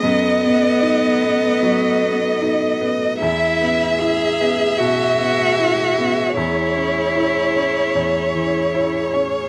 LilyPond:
<<
  \new Staff \with { instrumentName = "Violin section" } { \time 4/4 \key b \major \tempo 4 = 76 dis''1 | e''1 | cis''1 | }
  \new Staff \with { instrumentName = "Viola" } { \time 4/4 \key b \major a'1 | gis'1~ | gis'1 | }
  \new Staff \with { instrumentName = "Cello" } { \time 4/4 \key b \major b2.~ b8 r8 | e'4 gis'4 fis'2 | e'2.~ e'8 r8 | }
  \new Staff \with { instrumentName = "Upright piano" } { \time 4/4 \key b \major fis,8 b8 dis'8 b8 fis8 b8 dis'8 b8 | e,8 b8 e'8 b8 b,8 b8 e'8 b8 | e,8 cis'8 e'8 cis'8 e,8 e8 e'8 cis'8 | }
>>